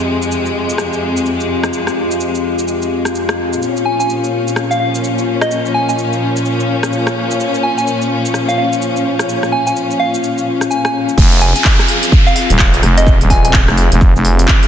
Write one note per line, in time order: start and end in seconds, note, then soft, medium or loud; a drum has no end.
0.00 3.58 F2 medium
0.00 3.58 C3 medium
0.00 3.58 G#3 medium
0.00 3.62 C4 medium
0.00 14.68 F4 medium
0.00 0.32 G#4 medium
0.00 14.68 F5 medium
0.20 4.95 G4 medium
0.20 shaker medium
0.32 shaker soft
0.46 shaker soft
0.70 shaker medium
0.78 cross-stick medium
0.78 shaker soft
0.93 shaker soft
1.17 shaker medium
1.26 shaker soft
1.40 shaker soft
1.64 cross-stick medium
1.64 shaker medium
1.73 shaker soft
1.87 cross-stick medium
1.87 shaker soft
2.11 shaker medium
2.21 shaker medium
2.35 shaker soft
2.59 shaker medium
2.68 shaker soft
2.82 shaker soft
3.05 cross-stick medium
3.05 shaker medium
3.15 shaker soft
3.29 cross-stick medium
3.29 shaker soft
3.53 shaker medium
3.62 11.14 A#2 medium
3.62 11.14 F3 medium
3.62 11.14 C#4 medium
3.62 11.18 C#4 medium
3.62 shaker soft
3.71 11.88 A#4 medium
3.77 shaker soft
3.85 3.95 G#5 medium
4.00 4.06 G#5 medium
4.00 shaker medium
4.10 shaker soft
4.24 shaker soft
4.48 shaker medium
4.56 cross-stick medium
4.56 shaker soft
4.71 4.77 F5 medium
4.71 shaker soft
4.80 4.89 F5 medium
4.95 shaker medium
5.04 shaker medium
5.18 shaker soft
5.41 5.59 D#5 medium
5.41 cross-stick medium
5.41 shaker medium
5.51 shaker medium
5.66 shaker soft
5.74 5.84 G#5 medium
5.89 5.95 G#5 medium
5.89 shaker medium
5.98 shaker medium
6.13 shaker soft
6.36 shaker medium
6.46 shaker medium
6.60 shaker soft
6.83 cross-stick medium
6.83 shaker medium
6.93 shaker medium
7.07 cross-stick medium
7.07 shaker soft
7.31 shaker medium
7.40 shaker soft
7.55 shaker soft
7.63 7.73 G#5 medium
7.78 7.84 G#5 medium
7.78 shaker medium
7.87 shaker medium
8.02 shaker soft
8.25 shaker medium
8.34 cross-stick medium
8.34 shaker medium
8.48 8.54 F5 medium
8.48 shaker soft
8.58 8.67 F5 medium
8.73 shaker medium
8.82 shaker medium
8.96 shaker soft
9.19 cross-stick medium
9.19 shaker medium
9.29 shaker medium
9.43 cross-stick medium
9.43 shaker soft
9.52 9.62 G#5 medium
9.67 9.73 G#5 medium
9.67 shaker medium
9.76 shaker medium
9.91 shaker soft
10.00 10.19 F5 medium
10.14 shaker medium
10.24 shaker medium
10.38 shaker soft
10.61 cross-stick medium
10.61 shaker medium
10.70 10.80 G#5 medium
10.70 shaker medium
10.85 10.91 G#5 medium
10.85 cross-stick medium
10.85 shaker soft
11.09 shaker medium
11.17 11.53 F1 loud
11.17 14.68 F3 medium
11.17 14.68 C4 medium
11.17 14.68 G#4 loud
11.17 kick loud
11.17 crash loud
11.17 downlifter medium
11.17 shaker medium
11.32 closed hi-hat medium
11.32 shaker soft
11.40 14.68 G#4 medium
11.40 11.51 G#5 medium
11.40 open hi-hat loud
11.56 11.62 G#5 medium
11.56 closed hi-hat medium
11.56 shaker medium
11.64 kick loud
11.64 clap loud
11.64 shaker medium
11.79 cross-stick medium
11.79 shaker soft
11.88 open hi-hat medium
12.03 closed hi-hat medium
12.03 shaker medium
12.12 kick loud
12.12 shaker medium
12.27 12.32 F5 medium
12.27 shaker soft
12.36 12.45 F5 medium
12.36 open hi-hat loud
12.50 12.82 D#1 loud
12.50 closed hi-hat medium
12.50 shaker medium
12.59 kick loud
12.59 clap loud
12.59 shaker medium
12.74 closed hi-hat medium
12.74 shaker soft
12.83 13.19 F1 loud
12.83 cross-stick medium
12.83 open hi-hat medium
12.97 13.14 D#5 loud
12.97 closed hi-hat medium
12.97 shaker medium
13.07 kick loud
13.07 shaker medium
13.21 13.66 D#1 medium
13.21 closed hi-hat medium
13.21 shaker soft
13.30 13.39 G#5 medium
13.30 kick medium
13.30 open hi-hat loud
13.45 13.51 G#5 medium
13.45 closed hi-hat medium
13.45 shaker medium
13.53 kick loud
13.53 clap loud
13.53 shaker medium
13.68 13.90 F1 medium
13.68 cross-stick medium
13.68 shaker soft
13.78 open hi-hat loud
13.92 14.13 F1 medium
13.92 closed hi-hat medium
13.92 shaker medium
14.01 kick loud
14.01 shaker medium
14.16 14.47 F1 loud
14.16 shaker soft
14.25 open hi-hat loud
14.39 closed hi-hat medium
14.39 shaker medium
14.48 kick loud
14.48 clap loud
14.48 shaker medium
14.63 closed hi-hat medium
14.63 shaker soft